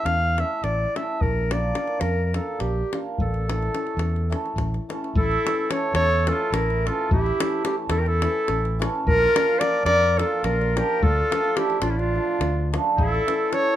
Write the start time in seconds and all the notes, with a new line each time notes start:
0.05 E2 F5, davul high
0.38 A3 C#4 E4 A4 E5, davul high
0.64 A1 D5, davul high
0.96 A3 C#4 E4 A4 E5, davul high
1.21 A#1 A#4, davul low
1.51 A#3 D4 F4 A#4 D5, davul high
1.75 A#3 D4 F4 A#4, davul high
1.88 davul high
2.01 F2 A#4, davul high
2.25 A#4
2.34 A#3 D4 F4 A4 A#4, davul high
2.60 A#1 G4, davul high
2.93 A#3 D4 F4 A#4, davul high
3.18 A1 A4, davul low
3.34 davul high
3.48 A3 C#4 E4 A4, davul high
3.63 davul high
3.74 A3 C#4 E4 A4, davul high
3.87 davul high
3.97 E2, davul high
4.16 davul high
4.30 A3 C#4 E4 A4, davul high
4.46 davul high
4.56 A1, davul high, davul low
4.74 davul high
4.89 A3 C#4 E4 A4, davul high
5.04 davul high
5.15 A1 E4 A4, davul low
5.31 davul high
5.44 E3 A3 C#4 E4 A4, davul high
5.69 E3 A3 C#4 E4 A4 C#5, davul high
5.94 E2 A4 C#5, davul high
6.11 davul high
6.27 E3 A3 C#4 E4 F4 A4, davul high
6.52 A1 E4 A#4, davul high
6.70 davul high
6.85 E3 A3 C#4 E4 F4 A4, davul high
7.11 A1 E4 G4, davul low
7.26 davul high
7.40 E3 A3 C#4 E4 A4, davul high
7.65 E3 A3 C#4 E4 G4 A4, davul high
7.89 E2 E4 A4, davul high
7.98 G4 A#4
8.06 E4 A4, davul high
8.22 E3 A3 C#4 E4 A4, davul high
8.48 A1, davul high
8.65 davul high
8.79 E3 A3 C#4 E4 A4, davul high
9.07 A#1 F4 A#4, davul low
9.22 davul high
9.34 F3 A#3 D4 F4 A#4, davul high
9.59 F3 A#3 D4 F4 A#4 D5, davul high
9.85 F2 A#4 D5, davul high
10.02 davul high
10.17 F3 A#3 D4 F4 A4 A#4, davul high
10.44 A#1 F4 A#4, davul high
10.62 davul high
10.76 F3 A#3 D4 F4 G4 A#4, davul high
11.02 D2 F4 A4, davul low
11.30 F3 A3 D4 F4 A4, davul high
11.44 davul high
11.56 F3 A3 D4 E4 F4 G4 A4, davul high
11.70 davul high
11.81 A1 D4 F4, davul high
11.89 C#4 E4
11.97 D4 F4, davul high
12.14 F3 A3 D4 F4 A4
12.41 D2, davul high
12.72 F3 A3 D4 F4 A4, davul high
12.97 A1 E4 A4, davul low
13.14 davul high
13.26 E3 A3 C#4 E4 A4, davul high
13.51 E3 A3 C#4 E4 A4 C#5, davul high